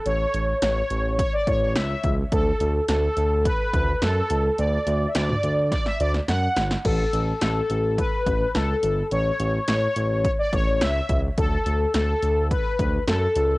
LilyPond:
<<
  \new Staff \with { instrumentName = "Analog polysynth" } { \time 4/4 \key d \major \tempo 4 = 106 cis''4 cis''4 cis''16 d''16 cis''8 e''8. r16 | a'4 a'4 b'4 a'4 | d''8.~ d''32 e''32 d''4 d''16 e''16 d''8 fis''8. r16 | a'4 a'4 b'4 a'4 |
cis''4 cis''4 cis''16 d''16 cis''8 e''8. r16 | a'4 a'4 b'4 a'4 | }
  \new Staff \with { instrumentName = "Analog synth bass" } { \clef bass \time 4/4 \key d \major a,,8 a,,8 a,,8 a,,8. r16 a,,8 cis,8 cis,8 | d,8 d,8 d,8 d,8. r16 d,8 fis,8 cis,8 | d,8 d,8 d,8 d,8. r16 d,8 fis,8 g,,8 | a,,8 a,,8 a,,8 a,,8. r16 a,,8 cis,8 g,,8 |
a,,8 a,,8 a,,8 a,,8. r16 a,,8 cis,8 cis,8 | d,8 d,8 d,8 d,8. r16 d,8 fis,8 cis,8 | }
  \new DrumStaff \with { instrumentName = "Drums" } \drummode { \time 4/4 hh8 hh8 <hh sn>8 hh8 <hh bd>8 <hh bd>8 <hh sn>8 <hh bd>8 | <hh bd>8 hh8 <hh sn>8 hh8 <hh bd>8 <hh bd>8 <hh sn>8 hh8 | hh8 hh8 <hh sn>16 toml16 hh8 <hh bd sn>16 sn16 hh16 sn16 <hh sn>8 <hh sn>16 sn16 | <cymc bd>8 hh8 <hh sn>8 hh8 <hh bd>8 <hh bd>8 <hh sn>8 hh8 |
hh8 hh8 <hh sn>8 hh8 <hh bd>8 <hh bd>8 <hh sn>8 <hh bd>8 | <hh bd>8 hh8 <hh sn>8 hh8 <hh bd>8 <hh bd>8 <hh sn>8 hh8 | }
>>